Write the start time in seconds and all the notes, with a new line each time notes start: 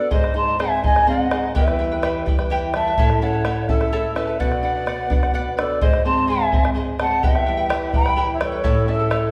Already playing: D5
0.00 D5 F#5
0.11 G#2 G#4 C5 D#5, bombo low
0.24 bombo rim
0.34 D#4 G#4 C5 D#5 A5 C6
0.48 C5 D#5
0.59 C4 G#4 C5 D#5 E5 G#5, bombo rim
0.83 D#4 G#4 C5 D#5 G#5, bombo low
0.95 C5 D#5, bombo rim
1.07 C4 G#4 C5 D#5 F#5
1.31 D#4 G#4 C5 D#5, bombo rim
1.43 C5 D#5, bombo rim
1.55 E2 E4 G4 B4 E5 G5, bombo low
1.68 bombo rim
1.79 G3 E4 B4 E5 G5
1.91 E4 B4 G5
2.02 E3 E4 G4 B4 E5 G5, bombo rim
2.26 G3 E4 B4 E5 G5, bombo low
2.39 E4 B4 G5, bombo rim
2.50 E3 E4 G4 B4 E5 G5
2.73 G3 E4 B4 E5 G5 A5, bombo rim
2.86 E4 B4 G5, bombo rim
2.98 A2 E4 A4 C#5 E5 A5, bombo low
3.10 bombo rim
3.21 C#4 E4 A4 C#5 E5 F#5 A5
3.33 E4 A4 A5
3.45 A3 E4 A4 C#5 E5 A5, bombo rim
3.69 C#4 E4 A4 E5 A5, bombo low
3.81 E4 A4 A5, bombo rim
3.92 A3 E4 A4 C#5 E5 A5
4.15 C#4 E4 A4 B4 E5 A5, bombo rim
4.27 E4 A4 A5, bombo rim
4.39 B2 B4 D5 F#5, bombo rim, bombo low
4.52 bombo rim
4.63 D4 B4 D5 F#5
4.75 D5 F#5
4.86 B3 B4 D5 F#5, bombo rim
5.10 D4 B4 D5 F#5, bombo low
5.22 D5 F#5, bombo rim
5.34 B3 B4 D5 F#5
5.57 D4 A4 B4 D5 F#5, bombo rim
5.69 D5 F#5, bombo rim
5.81 G#2 G#4 C5 D#5, bombo low
5.93 bombo rim
6.04 C4 G#4 C5 D#5 A5 C6
6.17 C5 D#5
6.27 G#3 G#4 C5 D#5 E5 G#5
6.51 C4 G#4 C5 D#5, bombo low
6.63 C5 D#5, bombo rim
6.74 G#3 G#4 C5 D#5
6.99 C4 G#4 C5 D#5 F#5 A5, bombo rim
7.11 C5 D#5, bombo rim
7.23 E2 E4 G4 B4 E5 G5, bombo low
7.35 bombo rim
7.46 G3 E4 B4 E5 G5
7.57 E4 B4 G5
7.69 E3 E4 G4 B4 E5 G5, bombo rim
7.93 G3 E4 B4 E5 G5 B5, bombo low
7.97 G5
8.05 E4 B4 G5, bombo rim
8.16 E3 E4 G4 B4 E5 G5
8.34 C#5 E5
8.40 G3 E4 A4 B4 C#5 E5 G5, bombo rim
8.52 E4 B4 G5, bombo rim
8.63 A2 E4 A4 C#5 E5 A5, bombo low
8.87 C#4 E4 A4 E5 A5
8.92 A4
8.99 E4 A4 A5
9.10 A3 E4 A4 C#5 E5 A5, bombo rim